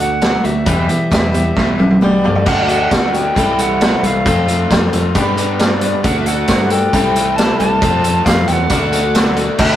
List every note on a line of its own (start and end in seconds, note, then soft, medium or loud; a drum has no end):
0.00 0.35 D2 medium
0.00 0.20 D3 medium
0.00 0.21 A3 soft
0.00 0.22 D4 soft
0.00 0.22 F#4 soft
0.00 0.46 F#5 medium
0.21 0.44 D3 medium
0.21 0.45 A3 medium
0.21 0.44 D4 medium
0.21 0.42 F#4 medium
0.21 snare loud
0.21 closed hi-hat medium
0.43 0.64 D2 medium
0.43 0.65 D3 medium
0.43 0.67 A3 soft
0.43 0.68 D4 soft
0.43 0.67 F#4 soft
0.43 2.02 E5 loud
0.43 closed hi-hat medium
0.66 0.86 E2 loud
0.66 0.89 E2 medium
0.66 0.90 B2 medium
0.66 0.90 E3 medium
0.66 0.89 G3 medium
0.66 0.88 B3 medium
0.66 0.87 G4 medium
0.66 kick loud
0.66 closed hi-hat medium
0.88 1.11 E2 medium
0.88 1.11 B2 medium
0.88 1.09 E3 medium
0.88 1.11 E3 soft
0.88 1.11 G3 soft
0.88 1.12 B3 soft
0.88 1.12 G4 medium
0.88 closed hi-hat medium
1.11 1.34 E2 medium
1.11 1.51 E2 medium
1.11 1.35 B2 medium
1.11 1.35 E3 medium
1.11 1.34 G3 medium
1.11 1.33 B3 medium
1.11 1.32 G4 medium
1.11 kick medium
1.11 snare medium
1.11 closed hi-hat medium
1.33 1.55 E2 medium
1.33 1.55 B2 medium
1.33 1.55 E3 soft
1.33 1.56 G3 medium
1.33 1.57 B3 soft
1.33 1.57 G4 medium
1.33 closed hi-hat medium
1.56 2.35 B1 medium
1.56 1.79 E2 medium
1.56 1.79 B2 medium
1.56 1.79 E3 medium
1.56 1.80 G3 medium
1.56 1.79 B3 medium
1.56 1.78 G4 medium
1.56 kick medium
1.56 snare soft
1.79 2.00 E2 medium
1.79 2.00 B2 medium
1.79 2.01 E3 soft
1.79 2.01 G3 medium
1.79 2.02 B3 medium
1.79 2.02 G4 medium
1.79 high tom medium
1.90 high tom medium
2.01 2.24 E2 medium
2.01 2.25 B2 medium
2.01 2.25 E3 medium
2.01 2.25 G3 medium
2.01 2.24 B3 medium
2.01 2.23 G4 medium
2.01 2.48 D5 medium
2.01 mid tom medium
2.24 2.45 E2 medium
2.24 2.45 B2 medium
2.24 2.46 E3 soft
2.24 2.47 G3 soft
2.24 2.47 B3 soft
2.24 2.47 G4 medium
2.24 floor tom medium
2.35 floor tom medium
2.46 2.86 D2 medium
2.46 2.69 D3 medium
2.46 2.70 A3 medium
2.46 2.69 D4 medium
2.46 2.67 F#4 medium
2.46 2.70 F#5 loud
2.46 kick loud
2.46 crash loud
2.68 2.91 A3 soft
2.68 2.92 D4 soft
2.68 2.92 F#4 soft
2.68 3.16 F#5 medium
2.68 closed hi-hat medium
2.91 3.31 D2 medium
2.91 3.14 D3 soft
2.91 3.15 A3 medium
2.91 3.14 D4 medium
2.91 3.12 F#4 medium
2.91 kick medium
2.91 snare loud
2.91 closed hi-hat medium
3.13 3.36 A3 soft
3.13 3.37 D4 soft
3.13 3.36 F#4 soft
3.13 3.63 G5 medium
3.13 closed hi-hat medium
3.36 3.95 C2 medium
3.36 3.59 C3 medium
3.36 3.59 E3 medium
3.36 3.59 G3 medium
3.36 4.25 C4 medium
3.36 3.60 E4 medium
3.36 3.58 A4 medium
3.36 kick medium
3.36 closed hi-hat medium
3.59 3.81 G3 soft
3.59 3.82 E4 soft
3.59 3.82 A4 medium
3.59 4.07 F#5 loud
3.59 closed hi-hat medium
3.81 4.04 E3 medium
3.81 4.04 G3 medium
3.81 4.04 E4 medium
3.81 4.02 A4 medium
3.81 snare loud
3.81 closed hi-hat medium
4.03 4.23 C2 medium
4.03 4.27 G3 soft
4.03 4.27 E4 soft
4.03 4.26 A4 medium
4.03 4.72 F5 medium
4.03 closed hi-hat medium
4.25 5.14 F2 medium
4.25 4.65 F2 medium
4.25 5.14 C3 medium
4.25 4.48 F3 medium
4.25 4.49 A3 medium
4.25 4.49 C4 medium
4.25 4.49 F4 medium
4.25 4.47 A4 medium
4.25 kick loud
4.25 closed hi-hat medium
4.48 4.71 C4 soft
4.48 4.72 F4 soft
4.48 4.71 A4 medium
4.48 closed hi-hat medium
4.70 4.90 F2 medium
4.70 4.93 A3 medium
4.70 4.94 C4 medium
4.70 4.94 F4 medium
4.70 4.92 A4 medium
4.70 kick medium
4.70 snare loud
4.70 closed hi-hat medium
4.93 5.13 F2 medium
4.93 5.16 C4 soft
4.93 5.17 F4 medium
4.93 5.16 A4 medium
4.93 closed hi-hat medium
5.15 6.03 G2 medium
5.15 5.93 G2 medium
5.15 6.02 D3 medium
5.15 5.38 G3 medium
5.15 5.38 B3 medium
5.15 5.38 D4 medium
5.15 6.05 G4 medium
5.15 5.36 B4 medium
5.15 kick medium
5.15 closed hi-hat medium
5.37 5.61 B3 medium
5.37 5.59 D4 soft
5.37 5.60 B4 medium
5.37 closed hi-hat medium
5.59 5.82 G3 medium
5.59 5.82 B3 medium
5.59 5.83 D4 medium
5.59 5.81 B4 medium
5.59 6.06 D5 medium
5.59 snare medium
5.59 closed hi-hat medium
5.81 6.05 B3 soft
5.81 6.05 B4 soft
5.81 closed hi-hat medium
5.85 6.04 D4 soft
6.04 6.43 D2 loud
6.04 6.27 D3 medium
6.04 6.92 A3 medium
6.04 6.95 A3 loud
6.04 6.92 D4 medium
6.04 6.28 D4 medium
6.04 6.92 F#4 medium
6.04 6.27 F#4 medium
6.04 6.92 A4 medium
6.04 6.25 A4 medium
6.04 6.19 F#5 loud
6.04 kick loud
6.04 closed hi-hat medium
6.20 6.28 E5 medium
6.26 6.49 D4 soft
6.26 6.49 F#4 soft
6.26 6.49 A4 medium
6.26 6.73 F#5 medium
6.26 closed hi-hat medium
6.26 tambourine medium
6.48 6.87 G2 medium
6.48 6.71 D3 medium
6.48 6.72 D4 medium
6.48 6.71 F#4 medium
6.48 kick medium
6.48 snare loud
6.48 closed hi-hat medium
6.48 tambourine medium
6.52 6.70 A4 medium
6.70 6.94 D4 soft
6.70 6.94 F#4 soft
6.70 6.94 A4 medium
6.70 7.38 G5 loud
6.70 closed hi-hat medium
6.70 tambourine medium
6.93 7.51 C2 medium
6.93 7.16 C3 medium
6.93 7.16 E3 medium
6.93 7.17 G3 medium
6.93 7.16 A3 medium
6.93 7.82 A3 medium
6.93 7.82 C4 medium
6.93 7.82 E4 medium
6.93 7.16 E4 medium
6.93 7.82 G4 medium
6.93 7.14 A4 medium
6.93 kick medium
6.93 closed hi-hat medium
6.93 tambourine medium
7.15 7.38 G3 soft
7.15 7.37 A3 soft
7.15 7.38 E4 soft
7.15 7.38 A4 medium
7.15 closed hi-hat medium
7.15 tambourine medium
7.36 7.61 G3 medium
7.36 7.60 A3 medium
7.36 7.60 E4 medium
7.36 7.59 A5 loud
7.36 snare loud
7.36 closed hi-hat medium
7.36 tambourine medium
7.41 7.58 A4 medium
7.59 7.79 C2 medium
7.59 7.82 G3 medium
7.59 7.81 A3 soft
7.59 7.83 E4 soft
7.59 7.82 A4 medium
7.59 8.27 A5 loud
7.59 closed hi-hat medium
7.81 8.69 F2 medium
7.81 8.21 F2 loud
7.81 8.70 C3 medium
7.81 8.04 F3 medium
7.81 8.05 A3 medium
7.81 8.70 A3 medium
7.81 8.05 C4 medium
7.81 8.71 C4 medium
7.81 8.70 F4 medium
7.81 8.04 F4 medium
7.81 8.71 A4 medium
7.81 8.02 A4 medium
7.81 kick loud
7.81 closed hi-hat medium
8.03 8.25 C4 soft
8.03 8.26 F4 medium
8.03 8.26 A4 medium
8.03 closed hi-hat medium
8.03 tambourine medium
8.25 8.45 F2 medium
8.25 8.48 A3 medium
8.25 8.49 C4 medium
8.25 8.48 F4 medium
8.25 8.46 A4 medium
8.25 8.49 F5 loud
8.25 kick medium
8.25 snare loud
8.25 closed hi-hat medium
8.25 tambourine medium
8.48 8.68 E2 medium
8.48 8.71 C4 soft
8.48 8.71 F4 soft
8.48 8.70 A4 medium
8.48 8.53 G5 medium
8.48 closed hi-hat medium
8.52 9.37 F#5 medium
8.70 9.47 D2 loud
8.70 8.93 D3 medium
8.70 9.58 A3 medium
8.70 9.59 A3 medium
8.70 8.93 D4 medium
8.70 9.59 D4 medium
8.70 9.59 F#4 medium
8.70 8.93 F#4 medium
8.70 9.59 A4 medium
8.70 8.91 A4 medium
8.70 kick medium
8.70 closed hi-hat medium
8.70 tambourine medium
8.92 9.14 D4 soft
8.92 9.16 F#4 soft
8.92 9.15 A4 soft
8.92 closed hi-hat medium
8.92 tambourine medium
9.14 9.37 D3 medium
9.14 9.38 D4 medium
9.14 9.38 F#4 medium
9.14 9.36 A4 medium
9.14 snare loud
9.14 closed hi-hat medium
9.14 tambourine loud
9.36 9.60 D4 soft
9.36 9.60 F#4 medium
9.36 9.59 A4 medium
9.36 closed hi-hat medium
9.59 9.76 D2 loud
9.59 9.76 D3 medium
9.59 9.76 A3 medium
9.59 9.76 D4 medium
9.59 9.76 E4 medium
9.59 9.76 F#4 medium
9.59 9.76 A4 medium
9.59 9.76 E5 loud
9.59 kick loud
9.59 crash loud